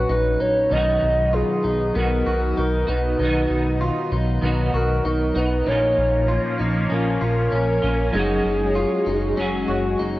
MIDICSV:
0, 0, Header, 1, 6, 480
1, 0, Start_track
1, 0, Tempo, 618557
1, 556, Time_signature, 4, 2, 24, 8
1, 7911, End_track
2, 0, Start_track
2, 0, Title_t, "Soft synth lead"
2, 0, Program_c, 0, 80
2, 81, Note_on_c, 0, 71, 91
2, 316, Note_on_c, 0, 73, 92
2, 327, Note_off_c, 0, 71, 0
2, 559, Note_on_c, 0, 75, 102
2, 571, Note_off_c, 0, 73, 0
2, 1041, Note_on_c, 0, 68, 97
2, 1052, Note_off_c, 0, 75, 0
2, 1519, Note_off_c, 0, 68, 0
2, 1522, Note_on_c, 0, 70, 96
2, 1968, Note_off_c, 0, 70, 0
2, 2003, Note_on_c, 0, 70, 78
2, 2223, Note_off_c, 0, 70, 0
2, 2243, Note_on_c, 0, 71, 91
2, 2929, Note_off_c, 0, 71, 0
2, 3683, Note_on_c, 0, 70, 84
2, 3903, Note_off_c, 0, 70, 0
2, 3927, Note_on_c, 0, 70, 86
2, 4166, Note_on_c, 0, 71, 88
2, 4178, Note_off_c, 0, 70, 0
2, 4407, Note_on_c, 0, 73, 98
2, 4418, Note_off_c, 0, 71, 0
2, 5121, Note_off_c, 0, 73, 0
2, 5362, Note_on_c, 0, 70, 107
2, 6323, Note_on_c, 0, 68, 110
2, 6334, Note_off_c, 0, 70, 0
2, 7759, Note_off_c, 0, 68, 0
2, 7911, End_track
3, 0, Start_track
3, 0, Title_t, "Clean electric guitar"
3, 0, Program_c, 1, 27
3, 72, Note_on_c, 1, 63, 71
3, 302, Note_off_c, 1, 63, 0
3, 311, Note_on_c, 1, 63, 70
3, 543, Note_off_c, 1, 63, 0
3, 552, Note_on_c, 1, 63, 73
3, 1032, Note_on_c, 1, 65, 66
3, 1034, Note_off_c, 1, 63, 0
3, 1272, Note_on_c, 1, 63, 63
3, 1274, Note_off_c, 1, 65, 0
3, 1510, Note_off_c, 1, 63, 0
3, 1514, Note_on_c, 1, 59, 68
3, 1754, Note_on_c, 1, 66, 69
3, 1755, Note_off_c, 1, 59, 0
3, 1995, Note_off_c, 1, 66, 0
3, 1995, Note_on_c, 1, 63, 72
3, 2227, Note_off_c, 1, 63, 0
3, 2237, Note_on_c, 1, 63, 74
3, 2467, Note_off_c, 1, 63, 0
3, 2477, Note_on_c, 1, 63, 76
3, 2956, Note_off_c, 1, 63, 0
3, 2956, Note_on_c, 1, 65, 75
3, 3196, Note_off_c, 1, 65, 0
3, 3198, Note_on_c, 1, 63, 64
3, 3432, Note_off_c, 1, 63, 0
3, 3435, Note_on_c, 1, 59, 69
3, 3676, Note_off_c, 1, 59, 0
3, 3678, Note_on_c, 1, 66, 70
3, 3917, Note_off_c, 1, 66, 0
3, 3917, Note_on_c, 1, 63, 69
3, 4148, Note_off_c, 1, 63, 0
3, 4157, Note_on_c, 1, 63, 74
3, 4388, Note_off_c, 1, 63, 0
3, 4397, Note_on_c, 1, 63, 77
3, 4875, Note_on_c, 1, 65, 72
3, 4877, Note_off_c, 1, 63, 0
3, 5115, Note_on_c, 1, 63, 66
3, 5116, Note_off_c, 1, 65, 0
3, 5349, Note_off_c, 1, 63, 0
3, 5353, Note_on_c, 1, 61, 67
3, 5594, Note_off_c, 1, 61, 0
3, 5594, Note_on_c, 1, 65, 69
3, 5834, Note_on_c, 1, 61, 79
3, 5835, Note_off_c, 1, 65, 0
3, 6064, Note_off_c, 1, 61, 0
3, 6074, Note_on_c, 1, 61, 68
3, 6309, Note_off_c, 1, 61, 0
3, 6312, Note_on_c, 1, 63, 78
3, 6793, Note_on_c, 1, 65, 70
3, 6794, Note_off_c, 1, 63, 0
3, 7032, Note_on_c, 1, 63, 66
3, 7035, Note_off_c, 1, 65, 0
3, 7270, Note_off_c, 1, 63, 0
3, 7273, Note_on_c, 1, 61, 76
3, 7511, Note_on_c, 1, 66, 69
3, 7515, Note_off_c, 1, 61, 0
3, 7753, Note_on_c, 1, 63, 76
3, 7754, Note_off_c, 1, 66, 0
3, 7911, Note_off_c, 1, 63, 0
3, 7911, End_track
4, 0, Start_track
4, 0, Title_t, "Clean electric guitar"
4, 0, Program_c, 2, 27
4, 538, Note_on_c, 2, 47, 74
4, 556, Note_on_c, 2, 51, 67
4, 571, Note_on_c, 2, 59, 70
4, 583, Note_on_c, 2, 63, 75
4, 596, Note_on_c, 2, 66, 71
4, 1496, Note_off_c, 2, 51, 0
4, 1505, Note_on_c, 2, 51, 48
4, 1507, Note_off_c, 2, 47, 0
4, 1510, Note_off_c, 2, 59, 0
4, 1520, Note_on_c, 2, 59, 55
4, 1522, Note_off_c, 2, 63, 0
4, 1531, Note_on_c, 2, 63, 54
4, 1533, Note_off_c, 2, 66, 0
4, 1543, Note_on_c, 2, 66, 57
4, 2217, Note_off_c, 2, 66, 0
4, 2226, Note_on_c, 2, 66, 50
4, 2231, Note_off_c, 2, 51, 0
4, 2238, Note_off_c, 2, 59, 0
4, 2239, Note_off_c, 2, 63, 0
4, 2248, Note_on_c, 2, 63, 41
4, 2264, Note_on_c, 2, 59, 41
4, 2461, Note_on_c, 2, 47, 66
4, 2471, Note_off_c, 2, 66, 0
4, 2478, Note_on_c, 2, 51, 77
4, 2482, Note_off_c, 2, 63, 0
4, 2485, Note_off_c, 2, 59, 0
4, 2494, Note_on_c, 2, 59, 69
4, 2506, Note_on_c, 2, 63, 83
4, 2518, Note_on_c, 2, 66, 76
4, 3417, Note_off_c, 2, 51, 0
4, 3427, Note_on_c, 2, 51, 64
4, 3429, Note_off_c, 2, 47, 0
4, 3432, Note_off_c, 2, 59, 0
4, 3441, Note_on_c, 2, 59, 63
4, 3444, Note_off_c, 2, 63, 0
4, 3453, Note_on_c, 2, 63, 72
4, 3454, Note_off_c, 2, 66, 0
4, 3464, Note_on_c, 2, 66, 66
4, 4140, Note_off_c, 2, 66, 0
4, 4149, Note_on_c, 2, 66, 49
4, 4151, Note_off_c, 2, 51, 0
4, 4159, Note_off_c, 2, 59, 0
4, 4161, Note_off_c, 2, 63, 0
4, 4170, Note_on_c, 2, 63, 43
4, 4186, Note_on_c, 2, 59, 38
4, 4381, Note_on_c, 2, 46, 77
4, 4393, Note_off_c, 2, 66, 0
4, 4399, Note_on_c, 2, 53, 72
4, 4403, Note_off_c, 2, 63, 0
4, 4409, Note_off_c, 2, 59, 0
4, 4412, Note_on_c, 2, 58, 79
4, 4425, Note_on_c, 2, 61, 76
4, 4438, Note_on_c, 2, 65, 69
4, 5338, Note_off_c, 2, 53, 0
4, 5347, Note_on_c, 2, 53, 61
4, 5348, Note_off_c, 2, 46, 0
4, 5352, Note_off_c, 2, 58, 0
4, 5361, Note_on_c, 2, 58, 54
4, 5369, Note_off_c, 2, 61, 0
4, 5373, Note_on_c, 2, 61, 59
4, 5374, Note_off_c, 2, 65, 0
4, 5383, Note_on_c, 2, 65, 67
4, 6058, Note_off_c, 2, 65, 0
4, 6067, Note_on_c, 2, 65, 56
4, 6072, Note_off_c, 2, 53, 0
4, 6079, Note_off_c, 2, 58, 0
4, 6086, Note_off_c, 2, 61, 0
4, 6089, Note_on_c, 2, 61, 50
4, 6106, Note_on_c, 2, 58, 50
4, 6301, Note_on_c, 2, 54, 72
4, 6312, Note_off_c, 2, 65, 0
4, 6319, Note_off_c, 2, 58, 0
4, 6322, Note_on_c, 2, 56, 74
4, 6323, Note_off_c, 2, 61, 0
4, 6341, Note_on_c, 2, 61, 65
4, 6356, Note_on_c, 2, 66, 80
4, 7261, Note_off_c, 2, 54, 0
4, 7265, Note_on_c, 2, 54, 62
4, 7268, Note_off_c, 2, 56, 0
4, 7277, Note_on_c, 2, 56, 65
4, 7281, Note_off_c, 2, 61, 0
4, 7291, Note_on_c, 2, 61, 73
4, 7298, Note_off_c, 2, 66, 0
4, 7301, Note_on_c, 2, 66, 64
4, 7911, Note_off_c, 2, 54, 0
4, 7911, Note_off_c, 2, 56, 0
4, 7911, Note_off_c, 2, 61, 0
4, 7911, Note_off_c, 2, 66, 0
4, 7911, End_track
5, 0, Start_track
5, 0, Title_t, "Analog synth pad"
5, 0, Program_c, 3, 89
5, 0, Note_on_c, 3, 46, 62
5, 0, Note_on_c, 3, 54, 76
5, 0, Note_on_c, 3, 61, 72
5, 525, Note_off_c, 3, 61, 0
5, 526, Note_off_c, 3, 46, 0
5, 550, Note_on_c, 3, 63, 77
5, 555, Note_on_c, 3, 59, 60
5, 4362, Note_off_c, 3, 63, 0
5, 4364, Note_off_c, 3, 59, 0
5, 4365, Note_off_c, 3, 54, 0
5, 4390, Note_on_c, 3, 53, 74
5, 4393, Note_on_c, 3, 61, 78
5, 4394, Note_on_c, 3, 58, 66
5, 6294, Note_off_c, 3, 53, 0
5, 6296, Note_off_c, 3, 58, 0
5, 6314, Note_on_c, 3, 54, 73
5, 6314, Note_on_c, 3, 56, 64
5, 7911, Note_off_c, 3, 54, 0
5, 7911, Note_off_c, 3, 56, 0
5, 7911, Note_off_c, 3, 61, 0
5, 7911, End_track
6, 0, Start_track
6, 0, Title_t, "Analog synth bass"
6, 0, Program_c, 4, 38
6, 76, Note_on_c, 4, 34, 105
6, 288, Note_off_c, 4, 34, 0
6, 319, Note_on_c, 4, 34, 77
6, 529, Note_off_c, 4, 34, 0
6, 555, Note_on_c, 4, 35, 103
6, 767, Note_off_c, 4, 35, 0
6, 799, Note_on_c, 4, 35, 91
6, 1114, Note_off_c, 4, 35, 0
6, 1276, Note_on_c, 4, 35, 96
6, 1488, Note_off_c, 4, 35, 0
6, 1518, Note_on_c, 4, 35, 93
6, 1728, Note_off_c, 4, 35, 0
6, 1755, Note_on_c, 4, 35, 86
6, 1967, Note_off_c, 4, 35, 0
6, 2000, Note_on_c, 4, 35, 101
6, 2209, Note_off_c, 4, 35, 0
6, 2239, Note_on_c, 4, 35, 91
6, 2449, Note_off_c, 4, 35, 0
6, 2480, Note_on_c, 4, 35, 96
6, 2690, Note_off_c, 4, 35, 0
6, 2717, Note_on_c, 4, 35, 94
6, 3033, Note_off_c, 4, 35, 0
6, 3199, Note_on_c, 4, 35, 85
6, 3409, Note_off_c, 4, 35, 0
6, 3439, Note_on_c, 4, 35, 96
6, 3649, Note_off_c, 4, 35, 0
6, 3677, Note_on_c, 4, 35, 92
6, 3888, Note_off_c, 4, 35, 0
6, 3919, Note_on_c, 4, 35, 112
6, 4129, Note_off_c, 4, 35, 0
6, 4160, Note_on_c, 4, 35, 83
6, 4370, Note_off_c, 4, 35, 0
6, 4403, Note_on_c, 4, 34, 95
6, 4611, Note_off_c, 4, 34, 0
6, 4641, Note_on_c, 4, 34, 96
6, 4956, Note_off_c, 4, 34, 0
6, 5122, Note_on_c, 4, 34, 99
6, 5331, Note_off_c, 4, 34, 0
6, 5362, Note_on_c, 4, 34, 101
6, 5571, Note_off_c, 4, 34, 0
6, 5601, Note_on_c, 4, 34, 97
6, 5810, Note_off_c, 4, 34, 0
6, 5841, Note_on_c, 4, 34, 91
6, 6050, Note_off_c, 4, 34, 0
6, 6082, Note_on_c, 4, 34, 85
6, 6291, Note_off_c, 4, 34, 0
6, 6319, Note_on_c, 4, 30, 100
6, 6529, Note_off_c, 4, 30, 0
6, 6558, Note_on_c, 4, 30, 93
6, 6874, Note_off_c, 4, 30, 0
6, 7036, Note_on_c, 4, 30, 83
6, 7247, Note_off_c, 4, 30, 0
6, 7280, Note_on_c, 4, 30, 86
6, 7490, Note_off_c, 4, 30, 0
6, 7516, Note_on_c, 4, 30, 97
6, 7727, Note_off_c, 4, 30, 0
6, 7758, Note_on_c, 4, 30, 90
6, 7911, Note_off_c, 4, 30, 0
6, 7911, End_track
0, 0, End_of_file